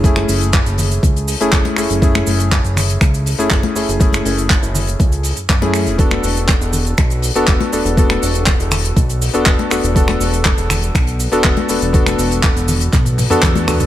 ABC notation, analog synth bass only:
X:1
M:4/4
L:1/16
Q:1/4=121
K:Emix
V:1 name="Analog synth bass" clef=bass
F,,,2 F,,,3 F,,,3 C,,3 F,,, F,,, z F,,, F,,,- | F,,,2 F,,,3 F,,,3 C,,3 z F,,, z F,,, F,,,- | F,,,2 F,,,3 F,,,3 C,,3 F,, F,,3 E,,,- | E,,,2 E,,,3 E,,,3 B,,,3 z E,,, z E,,, E,,,- |
E,,,2 E,,,3 E,,,3 B,,,3 E,,, E,,, z E,,, E,,,- | E,,,2 E,,,3 E,,,3 B,,,3 z E,,, z E,,, E,,,- | E,,,2 E,,,3 E,,,3 B,,,3 z E,,3 E,,, |]